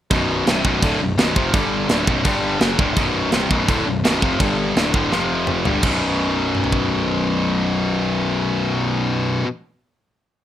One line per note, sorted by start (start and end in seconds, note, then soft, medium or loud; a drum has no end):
0.11 0.44 B0 medium
0.11 0.46 B1 medium
0.11 0.46 F#2 loud
0.11 0.46 B2 loud
0.11 kick loud
0.11 crash medium
0.46 0.63 C1 medium
0.46 0.64 C2 medium
0.46 0.64 G2 loud
0.46 0.64 C3 loud
0.46 snare loud
0.46 crash medium
0.64 0.81 B0 medium
0.64 0.82 B1 medium
0.64 0.82 F#2 loud
0.64 0.82 B2 loud
0.64 kick loud
0.82 0.99 D1 loud
0.82 0.99 D2 medium
0.82 0.99 A2 medium
0.82 1.00 D3 loud
0.82 kick loud
0.82 crash medium
0.99 1.17 B0 medium
0.99 1.14 B1 medium
0.99 1.14 F#2 medium
1.18 1.35 B0 medium
1.18 1.35 B1 loud
1.18 1.35 F#2 loud
1.18 1.35 B2 loud
1.18 snare loud
1.18 crash medium
1.35 1.52 F1 loud
1.35 1.52 F2 medium
1.35 1.53 C3 medium
1.35 1.53 F3 loud
1.35 kick loud
1.53 1.87 G1 medium
1.53 1.88 G2 loud
1.53 1.89 D3 loud
1.53 1.89 G3 loud
1.53 kick loud
1.53 crash medium
1.89 2.06 D1 loud
1.89 2.06 D2 loud
1.89 2.07 A2 medium
1.89 2.07 D3 loud
1.89 snare loud
1.89 crash medium
2.07 2.24 B0 medium
2.07 2.25 B1 medium
2.07 2.25 F#2 medium
2.07 2.25 B2 loud
2.07 kick loud
2.25 2.58 G1 medium
2.25 2.60 G2 medium
2.25 2.60 D3 medium
2.25 2.60 G3 loud
2.25 kick loud
2.25 crash medium
2.60 2.78 F#1 loud
2.60 2.78 F#2 loud
2.60 2.78 C#3 loud
2.60 2.78 F#3 loud
2.60 snare loud
2.60 crash medium
2.78 2.95 D1 loud
2.78 2.96 D2 medium
2.78 2.96 A2 medium
2.78 2.97 D3 loud
2.78 kick loud
2.96 3.30 B0 medium
2.96 3.31 B1 loud
2.96 3.32 F#2 loud
2.96 3.32 B2 loud
2.96 kick loud
2.96 crash medium
3.31 3.49 C1 loud
3.31 3.49 C2 loud
3.31 3.49 G2 loud
3.31 3.50 C3 loud
3.31 snare loud
3.31 crash medium
3.50 3.67 B0 medium
3.50 3.67 B1 loud
3.50 3.67 F#2 loud
3.50 3.68 B2 loud
3.50 kick loud
3.67 3.85 D1 loud
3.67 3.85 D2 medium
3.67 3.85 A2 medium
3.67 3.86 D3 loud
3.67 kick loud
3.67 crash medium
3.86 4.03 B0 medium
3.86 4.01 B1 medium
3.86 4.01 F#2 medium
4.04 4.21 B0 medium
4.04 4.21 B1 medium
4.04 4.22 F#2 loud
4.04 4.22 B2 loud
4.04 snare loud
4.04 crash medium
4.21 4.39 F1 loud
4.21 4.39 F2 medium
4.21 4.40 C3 medium
4.21 4.40 F3 medium
4.21 kick loud
4.40 4.73 G1 loud
4.40 4.75 G2 loud
4.40 4.75 D3 loud
4.40 4.76 G3 loud
4.40 kick loud
4.40 crash medium
4.75 4.92 D1 loud
4.75 4.92 D2 medium
4.75 4.93 A2 loud
4.75 4.93 D3 loud
4.75 snare loud
4.75 crash medium
4.94 5.10 D1 medium
4.94 5.11 D2 medium
4.94 5.11 A2 medium
4.94 5.11 D3 loud
4.94 kick loud
5.12 5.62 F1 medium
5.12 5.65 F2 medium
5.12 5.65 C3 medium
5.12 5.65 F3 medium
5.12 snare medium
5.47 mid tom loud
5.65 5.82 G1 medium
5.65 5.81 G2 loud
5.65 5.83 D3 loud
5.65 5.83 G3 loud
5.65 floor tom medium
5.82 9.40 B0 medium
5.82 9.43 B1 medium
5.82 9.45 F#2 loud
5.82 9.47 B2 loud
5.82 kick loud
5.82 crash medium
6.55 mid tom medium
6.64 floor tom medium
6.72 kick medium